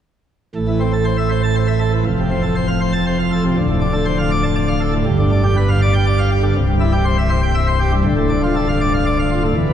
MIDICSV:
0, 0, Header, 1, 2, 480
1, 0, Start_track
1, 0, Tempo, 500417
1, 529, Time_signature, 3, 2, 24, 8
1, 9335, End_track
2, 0, Start_track
2, 0, Title_t, "Pipe organ"
2, 0, Program_c, 0, 19
2, 532, Note_on_c, 0, 33, 75
2, 532, Note_on_c, 0, 45, 74
2, 652, Note_on_c, 0, 52, 54
2, 759, Note_off_c, 0, 52, 0
2, 770, Note_on_c, 0, 60, 58
2, 877, Note_off_c, 0, 60, 0
2, 890, Note_on_c, 0, 69, 63
2, 997, Note_off_c, 0, 69, 0
2, 1006, Note_on_c, 0, 72, 62
2, 1115, Note_off_c, 0, 72, 0
2, 1129, Note_on_c, 0, 76, 55
2, 1237, Note_off_c, 0, 76, 0
2, 1248, Note_on_c, 0, 72, 61
2, 1356, Note_off_c, 0, 72, 0
2, 1374, Note_on_c, 0, 81, 85
2, 1480, Note_off_c, 0, 81, 0
2, 1491, Note_on_c, 0, 72, 67
2, 1599, Note_off_c, 0, 72, 0
2, 1606, Note_on_c, 0, 76, 58
2, 1717, Note_off_c, 0, 76, 0
2, 1724, Note_on_c, 0, 69, 61
2, 1836, Note_off_c, 0, 69, 0
2, 1855, Note_on_c, 0, 52, 57
2, 1940, Note_off_c, 0, 33, 0
2, 1940, Note_off_c, 0, 45, 0
2, 1958, Note_off_c, 0, 52, 0
2, 1976, Note_on_c, 0, 29, 75
2, 1976, Note_on_c, 0, 41, 69
2, 2100, Note_on_c, 0, 48, 56
2, 2207, Note_off_c, 0, 48, 0
2, 2213, Note_on_c, 0, 60, 58
2, 2323, Note_off_c, 0, 60, 0
2, 2328, Note_on_c, 0, 69, 60
2, 2441, Note_off_c, 0, 69, 0
2, 2452, Note_on_c, 0, 72, 68
2, 2564, Note_off_c, 0, 72, 0
2, 2569, Note_on_c, 0, 77, 59
2, 2682, Note_off_c, 0, 77, 0
2, 2694, Note_on_c, 0, 72, 68
2, 2805, Note_off_c, 0, 72, 0
2, 2808, Note_on_c, 0, 81, 79
2, 2922, Note_off_c, 0, 81, 0
2, 2941, Note_on_c, 0, 72, 72
2, 3049, Note_off_c, 0, 72, 0
2, 3063, Note_on_c, 0, 77, 64
2, 3171, Note_off_c, 0, 77, 0
2, 3182, Note_on_c, 0, 69, 66
2, 3290, Note_off_c, 0, 69, 0
2, 3306, Note_on_c, 0, 48, 56
2, 3386, Note_off_c, 0, 29, 0
2, 3386, Note_off_c, 0, 41, 0
2, 3407, Note_off_c, 0, 48, 0
2, 3425, Note_on_c, 0, 38, 77
2, 3429, Note_on_c, 0, 26, 82
2, 3544, Note_on_c, 0, 45, 57
2, 3651, Note_off_c, 0, 45, 0
2, 3655, Note_on_c, 0, 62, 60
2, 3765, Note_off_c, 0, 62, 0
2, 3773, Note_on_c, 0, 69, 66
2, 3884, Note_off_c, 0, 69, 0
2, 3888, Note_on_c, 0, 72, 71
2, 4001, Note_off_c, 0, 72, 0
2, 4016, Note_on_c, 0, 77, 66
2, 4126, Note_off_c, 0, 77, 0
2, 4134, Note_on_c, 0, 74, 70
2, 4245, Note_off_c, 0, 74, 0
2, 4253, Note_on_c, 0, 81, 92
2, 4364, Note_off_c, 0, 81, 0
2, 4371, Note_on_c, 0, 74, 72
2, 4483, Note_off_c, 0, 74, 0
2, 4488, Note_on_c, 0, 77, 65
2, 4602, Note_off_c, 0, 77, 0
2, 4612, Note_on_c, 0, 69, 75
2, 4724, Note_off_c, 0, 69, 0
2, 4731, Note_on_c, 0, 45, 61
2, 4825, Note_off_c, 0, 38, 0
2, 4827, Note_off_c, 0, 26, 0
2, 4838, Note_off_c, 0, 45, 0
2, 4852, Note_on_c, 0, 31, 88
2, 4852, Note_on_c, 0, 43, 81
2, 4977, Note_on_c, 0, 50, 66
2, 5086, Note_off_c, 0, 50, 0
2, 5102, Note_on_c, 0, 62, 64
2, 5209, Note_off_c, 0, 62, 0
2, 5218, Note_on_c, 0, 67, 68
2, 5326, Note_off_c, 0, 67, 0
2, 5342, Note_on_c, 0, 71, 70
2, 5448, Note_off_c, 0, 71, 0
2, 5458, Note_on_c, 0, 77, 68
2, 5566, Note_off_c, 0, 77, 0
2, 5580, Note_on_c, 0, 74, 78
2, 5687, Note_off_c, 0, 74, 0
2, 5697, Note_on_c, 0, 79, 102
2, 5804, Note_off_c, 0, 79, 0
2, 5816, Note_on_c, 0, 74, 76
2, 5924, Note_off_c, 0, 74, 0
2, 5931, Note_on_c, 0, 77, 78
2, 6040, Note_off_c, 0, 77, 0
2, 6058, Note_on_c, 0, 67, 79
2, 6164, Note_off_c, 0, 67, 0
2, 6167, Note_on_c, 0, 50, 61
2, 6252, Note_off_c, 0, 31, 0
2, 6253, Note_off_c, 0, 43, 0
2, 6272, Note_off_c, 0, 50, 0
2, 6286, Note_on_c, 0, 24, 88
2, 6286, Note_on_c, 0, 36, 94
2, 6413, Note_on_c, 0, 43, 65
2, 6520, Note_off_c, 0, 43, 0
2, 6524, Note_on_c, 0, 64, 72
2, 6635, Note_off_c, 0, 64, 0
2, 6642, Note_on_c, 0, 67, 77
2, 6754, Note_off_c, 0, 67, 0
2, 6763, Note_on_c, 0, 72, 78
2, 6874, Note_off_c, 0, 72, 0
2, 6890, Note_on_c, 0, 76, 72
2, 6996, Note_on_c, 0, 72, 85
2, 6998, Note_off_c, 0, 76, 0
2, 7110, Note_off_c, 0, 72, 0
2, 7123, Note_on_c, 0, 79, 95
2, 7234, Note_off_c, 0, 79, 0
2, 7239, Note_on_c, 0, 76, 83
2, 7352, Note_off_c, 0, 76, 0
2, 7361, Note_on_c, 0, 72, 80
2, 7473, Note_off_c, 0, 72, 0
2, 7483, Note_on_c, 0, 67, 78
2, 7594, Note_off_c, 0, 67, 0
2, 7600, Note_on_c, 0, 43, 64
2, 7689, Note_off_c, 0, 24, 0
2, 7689, Note_off_c, 0, 36, 0
2, 7707, Note_off_c, 0, 43, 0
2, 7713, Note_on_c, 0, 38, 92
2, 7714, Note_on_c, 0, 26, 94
2, 7839, Note_on_c, 0, 45, 75
2, 7951, Note_off_c, 0, 45, 0
2, 7956, Note_on_c, 0, 62, 73
2, 8069, Note_off_c, 0, 62, 0
2, 8088, Note_on_c, 0, 65, 76
2, 8196, Note_off_c, 0, 65, 0
2, 8207, Note_on_c, 0, 69, 72
2, 8314, Note_off_c, 0, 69, 0
2, 8332, Note_on_c, 0, 77, 87
2, 8437, Note_off_c, 0, 77, 0
2, 8448, Note_on_c, 0, 74, 81
2, 8553, Note_off_c, 0, 74, 0
2, 8576, Note_on_c, 0, 77, 76
2, 8678, Note_off_c, 0, 77, 0
2, 8691, Note_on_c, 0, 74, 85
2, 8794, Note_off_c, 0, 74, 0
2, 8816, Note_on_c, 0, 77, 74
2, 8917, Note_off_c, 0, 77, 0
2, 8935, Note_on_c, 0, 65, 79
2, 9036, Note_off_c, 0, 65, 0
2, 9055, Note_on_c, 0, 45, 62
2, 9113, Note_off_c, 0, 26, 0
2, 9113, Note_off_c, 0, 38, 0
2, 9151, Note_off_c, 0, 45, 0
2, 9171, Note_on_c, 0, 40, 83
2, 9174, Note_on_c, 0, 28, 90
2, 9294, Note_on_c, 0, 47, 63
2, 9335, Note_off_c, 0, 28, 0
2, 9335, Note_off_c, 0, 40, 0
2, 9335, Note_off_c, 0, 47, 0
2, 9335, End_track
0, 0, End_of_file